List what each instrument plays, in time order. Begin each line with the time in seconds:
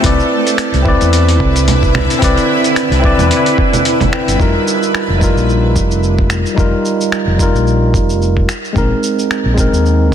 0.01 fingered electric bass C2, ambient pad D3 E4 B4, tine electric piano C4 E4 B4, kick, closed hi-hat, shaker
0.06 tine electric piano D5
0.20 shaker
0.47 closed hi-hat, shaker
0.58 finger snap, closed hi-hat, shaker
0.74 fingered electric bass C2, closed hi-hat, shaker
0.83 tine electric piano C4 E4, kick
0.87 tine electric piano B4 D5
1.01 fingered electric bass E2, closed hi-hat, shaker
1.13 closed hi-hat, shaker
1.29 closed hi-hat, shaker
1.40 fingered electric bass C2, kick
1.56 closed hi-hat, shaker
1.68 closed hi-hat, low conga, shaker
1.83 kick, shaker
1.95 finger snap, low conga
2.10 closed hi-hat, shaker
2.19 fingered electric bass C2, tine electric piano C4 E4 B4, kick, closed hi-hat, shaker
2.24 tine electric piano D5
2.37 closed hi-hat, shaker
2.64 closed hi-hat, shaker
2.76 finger snap, closed hi-hat, shaker
2.91 fingered electric bass C2, closed hi-hat, shaker
2.99 tine electric piano C4 E4
3.03 tine electric piano B4 D5, kick
3.18 fingered electric bass E2, closed hi-hat, low conga, shaker
3.31 closed hi-hat, shaker
3.46 closed hi-hat, shaker
3.58 kick
3.73 closed hi-hat, low conga, shaker
3.85 closed hi-hat, shaker
4.01 kick, closed hi-hat, low conga, shaker
4.11 tine electric piano C4 E4 B4 G5, finger snap
4.28 fingered electric bass G1, closed hi-hat, shaker
4.37 fingered electric bass F1, tine electric piano G3 D#4 F4, kick, shaker
4.42 tine electric piano A#4
4.67 shaker
4.83 shaker
4.95 finger snap, shaker
5.10 fingered electric bass F1
5.18 tine electric piano G3 D#4 F4, kick, shaker
5.24 tine electric piano A#4
5.37 fingered electric bass A#1, shaker
5.49 shaker
5.76 fingered electric bass F1, kick, shaker
5.91 shaker
6.03 shaker
6.19 kick
6.30 finger snap, shaker
6.46 shaker
6.54 fingered electric bass F1, tine electric piano G3 D#4 F4, kick, shaker
6.60 tine electric piano A#4
6.85 shaker
7.01 shaker
7.12 finger snap, shaker
7.27 fingered electric bass F1
7.37 tine electric piano G3 D#4 F4, kick, shaker
7.43 tine electric piano A#4
7.55 fingered electric bass A#1, shaker
7.67 shaker
7.94 fingered electric bass F1, kick, shaker
8.10 shaker
8.22 shaker
8.37 kick
8.49 finger snap, shaker
8.65 shaker
8.73 fingered electric bass A#1, tine electric piano G#3 C4 D#4, kick, shaker
8.78 tine electric piano A#4
9.03 shaker
9.19 shaker
9.31 finger snap, shaker
9.45 fingered electric bass A#1
9.54 tine electric piano G#3 C4 D#4, kick, shaker
9.60 tine electric piano A#4
9.73 fingered electric bass D#2, shaker
9.86 shaker